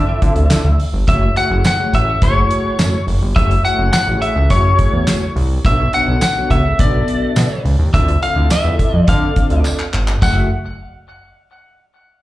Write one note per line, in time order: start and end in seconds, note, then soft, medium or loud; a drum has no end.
0.00 0.65 C4 medium
0.00 0.65 E4 medium
0.00 0.65 F4 medium
0.00 0.65 A4 medium
0.00 0.65 D5 medium
0.00 0.80 E5 loud
0.22 0.34 D3 loud
0.22 kick loud
0.22 closed hi-hat medium
0.36 0.48 D2 medium
0.36 closed hi-hat medium
0.50 0.62 D3 medium
0.50 snare loud
0.50 clap loud
0.50 closed hi-hat loud
0.50 tambourine medium
0.65 0.76 D2 medium
0.80 open hi-hat medium
0.93 1.05 G1 medium
1.07 1.31 F#1 loud
1.07 1.25 A3 medium
1.07 1.26 E4 medium
1.07 1.26 F#4 medium
1.07 1.26 G#4 medium
1.07 1.26 C#5 loud
1.07 1.37 E5 loud
1.07 kick loud
1.07 closed hi-hat medium
1.36 1.63 A3 medium
1.36 1.63 E4 medium
1.36 1.63 F#4 medium
1.36 1.63 G#4 medium
1.36 1.63 C#5 medium
1.36 1.65 F#5 loud
1.36 closed hi-hat medium
1.50 1.62 F#1 loud
1.64 1.94 F#5 loud
1.64 snare loud
1.64 clap medium
1.64 closed hi-hat medium
1.64 tambourine loud
1.78 2.06 A3 medium
1.78 2.06 E4 medium
1.78 2.06 F#4 medium
1.78 2.06 G#4 medium
1.78 2.06 C#5 medium
1.93 2.17 A1 loud
1.93 2.24 E5 loud
1.93 kick medium
1.93 closed hi-hat medium
2.21 2.45 F#1 loud
2.21 2.93 A3 medium
2.21 2.93 E4 medium
2.21 2.93 F#4 medium
2.21 2.93 G#4 medium
2.21 2.93 C#5 loud
2.21 3.04 C#5 medium
2.21 kick loud
2.21 closed hi-hat loud
2.51 closed hi-hat medium
2.79 2.91 F#2 loud
2.79 snare loud
2.79 clap medium
2.79 closed hi-hat loud
2.79 tambourine medium
3.07 3.19 F#1 loud
3.07 open hi-hat medium
3.22 3.34 G1 loud
3.36 3.59 F#1 loud
3.36 3.54 A3 medium
3.36 3.54 E4 medium
3.36 3.54 F#4 medium
3.36 3.54 G#4 medium
3.36 3.54 C#5 medium
3.36 3.63 E5 loud
3.36 kick loud
3.36 closed hi-hat medium
3.51 closed hi-hat medium
3.64 3.91 A3 medium
3.64 3.91 E4 medium
3.64 3.92 F#4 medium
3.64 3.92 G#4 medium
3.64 3.92 C#5 medium
3.64 3.92 F#5 loud
3.64 closed hi-hat medium
3.78 3.90 F#1 loud
3.93 4.21 F#5 loud
3.93 snare loud
3.93 clap loud
3.93 closed hi-hat medium
3.93 tambourine loud
4.07 4.19 A1 medium
4.07 4.34 A3 medium
4.07 4.34 E4 medium
4.07 4.35 F#4 medium
4.07 4.35 G#4 medium
4.07 4.35 C#5 medium
4.22 4.48 E5 loud
4.22 closed hi-hat medium
4.36 4.52 C#2 loud
4.50 4.74 F#2 loud
4.50 5.22 A3 medium
4.50 5.22 E4 medium
4.50 5.22 F#4 medium
4.50 5.22 G#4 medium
4.50 5.32 C#5 medium
4.50 5.22 C#5 medium
4.50 kick loud
4.50 closed hi-hat loud
4.79 kick loud
4.79 closed hi-hat medium
4.93 5.05 E2 medium
5.07 snare loud
5.07 clap loud
5.07 closed hi-hat loud
5.07 tambourine medium
5.36 5.59 C2 loud
5.36 open hi-hat medium
5.65 5.88 B1 loud
5.65 5.83 B3 medium
5.65 5.83 D4 medium
5.65 5.83 F#4 medium
5.65 5.83 A4 medium
5.65 5.83 C#5 medium
5.65 5.94 E5 loud
5.65 kick loud
5.65 closed hi-hat medium
5.93 6.20 B3 medium
5.93 6.20 D4 medium
5.93 6.20 F#4 medium
5.93 6.20 A4 medium
5.93 6.21 C#5 medium
5.93 6.21 F#5 loud
5.93 closed hi-hat medium
6.08 6.19 B1 loud
6.21 6.50 F#5 loud
6.21 snare loud
6.21 clap loud
6.21 closed hi-hat medium
6.21 tambourine medium
6.36 6.63 B3 medium
6.36 6.63 D4 medium
6.36 6.63 F#4 medium
6.36 6.63 A4 medium
6.36 6.63 C#5 medium
6.50 6.74 C#2 medium
6.50 6.80 E5 loud
6.50 kick medium
6.50 closed hi-hat medium
6.79 7.02 B1 loud
6.79 7.50 B3 medium
6.79 7.51 D4 medium
6.79 7.51 F#4 medium
6.79 7.51 A4 medium
6.79 7.61 D5 medium
6.79 7.51 E5 medium
6.79 kick loud
6.79 closed hi-hat loud
7.08 closed hi-hat medium
7.36 7.48 B2 medium
7.36 snare loud
7.36 clap loud
7.36 closed hi-hat loud
7.36 tambourine medium
7.65 7.76 C#2 medium
7.65 open hi-hat medium
7.79 7.91 D#2 loud
7.94 8.17 D2 loud
7.94 8.11 C4 medium
7.94 8.11 E4 medium
7.94 8.12 F4 medium
7.94 8.12 A4 medium
7.94 8.12 D5 medium
7.94 8.22 E5 loud
7.94 kick loud
7.94 closed hi-hat medium
8.08 closed hi-hat medium
8.22 8.49 C4 medium
8.22 8.49 E4 medium
8.22 8.49 F4 medium
8.22 8.49 A4 medium
8.22 8.49 D5 medium
8.22 8.51 F5 loud
8.22 closed hi-hat medium
8.36 8.48 D2 loud
8.50 8.97 E5 loud
8.50 snare loud
8.50 clap medium
8.50 closed hi-hat loud
8.50 tambourine medium
8.65 8.76 E2 loud
8.65 8.91 C4 medium
8.65 8.92 E4 medium
8.65 8.92 F4 medium
8.65 8.92 A4 medium
8.65 8.92 D5 medium
8.79 kick medium
8.79 closed hi-hat medium
8.94 9.05 F2 medium
8.94 9.08 D5 loud
9.08 9.31 D3 loud
9.08 9.79 C4 medium
9.08 9.79 D4 medium
9.08 9.79 F4 medium
9.08 9.79 A4 medium
9.08 9.79 D5 medium
9.08 9.61 F5 medium
9.08 kick loud
9.08 closed hi-hat loud
9.36 kick loud
9.36 closed hi-hat medium
9.50 9.62 D2 medium
9.50 closed hi-hat medium
9.65 clap medium
9.65 tambourine medium
9.79 clap medium
9.94 10.17 G1 medium
9.94 clap medium
10.08 clap loud
10.22 10.49 F#1 loud
10.22 10.49 A3 medium
10.22 10.49 F#4 medium
10.22 10.49 G#4 medium
10.22 10.49 E5 loud
10.22 10.49 F#5 medium
10.22 kick loud
10.22 crash medium
10.22 tambourine medium